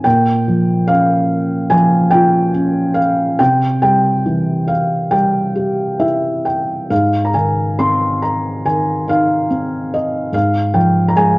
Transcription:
0.04 3.35 A#2 medium
0.04 0.90 G5 medium
0.48 1.69 F3 soft
0.88 2.50 C#4 soft
0.88 1.72 F5 medium
1.70 3.36 F3 medium
1.70 2.08 G#5 medium
2.10 3.36 F4 soft
2.10 2.98 G5 medium
2.54 3.37 C#4 soft
2.94 3.40 F5 medium
3.39 6.87 C3 medium
3.39 3.80 G5 medium
3.82 5.10 G3 soft
3.82 4.70 G5 medium
4.26 5.97 E3 soft
4.68 5.13 F5 medium
5.11 6.87 G3 soft
5.11 6.03 G5 medium
5.56 6.87 G4 soft
5.99 6.87 E4 soft
5.99 6.46 E5 medium
6.45 6.87 G5 medium
6.90 10.29 G#2 soft
6.90 7.29 F5 medium
7.25 7.34 A#5 medium
7.34 8.64 D#3 soft
7.34 7.75 G#5 medium
7.79 9.46 C4 soft
7.79 8.19 C6 medium
8.22 8.67 A#5 medium
8.65 10.30 D#3 soft
8.65 9.10 G#5 medium
9.08 10.30 D#4 soft
9.08 9.95 F5 medium
9.50 10.31 C4 soft
9.94 10.36 D#5 medium
10.32 11.39 G#2 medium
10.32 10.76 F5 medium
10.74 11.39 F3 soft
10.74 11.10 G5 medium
11.08 11.15 A#5 medium
11.16 11.39 G#3 soft
11.16 11.39 G#5 medium

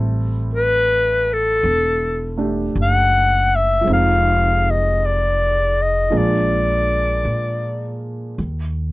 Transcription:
0.00 1.58 A1 medium
0.00 3.86 G3 soft
0.00 2.36 A3 soft
0.00 3.85 C4 soft
0.00 3.87 E4 soft
0.00 3.88 A4 medium
0.54 1.35 B4 loud
1.33 2.42 A4 loud
1.63 2.71 E1 medium
2.37 3.86 A3 soft
2.37 3.86 D4 soft
2.37 3.87 G4 soft
2.75 3.83 F#1 medium
2.82 3.57 F#5 loud
3.56 3.89 E5 medium
3.81 6.08 F3 soft
3.81 6.10 G#3 soft
3.87 6.08 F1 medium
3.87 6.11 C4 soft
3.87 6.13 D#4 soft
3.92 6.10 G#4 soft
3.92 4.72 F5 medium
4.70 5.06 D#5 medium
5.05 5.83 D5 medium
5.82 6.18 D#5 medium
6.10 7.20 A#1 medium
6.10 8.37 F3 soft
6.10 8.37 G#3 soft
6.10 8.37 A#3 soft
6.10 8.37 D4 soft
6.10 8.37 G#4 soft
6.17 8.04 D5 medium
7.25 8.33 A#2 medium
8.38 8.92 D#2 medium

